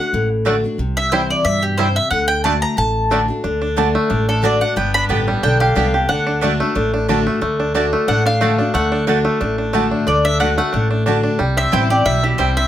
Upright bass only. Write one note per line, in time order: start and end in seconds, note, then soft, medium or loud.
0.13 0.64 A1 medium
0.78 1.30 C2 medium
1.45 1.96 G2 medium
2.11 2.62 D2 medium
2.77 3.29 A1 medium
3.44 3.95 D2 medium
4.10 4.62 A1 medium
4.76 5.02 G1 medium
5.09 5.38 A1 medium
5.43 5.71 B1 medium
5.76 6.04 C2 medium
6.09 6.60 D2 medium
6.75 7.27 A1 medium
7.41 7.93 D2 medium
8.07 8.59 A1 medium
8.74 9.25 D2 medium
9.41 9.92 A1 medium
10.07 10.58 D2 medium
10.73 11.25 A1 medium
11.40 11.65 C2 medium
11.73 12.01 A1 medium
12.05 12.34 B1 medium
12.39 12.67 C2 medium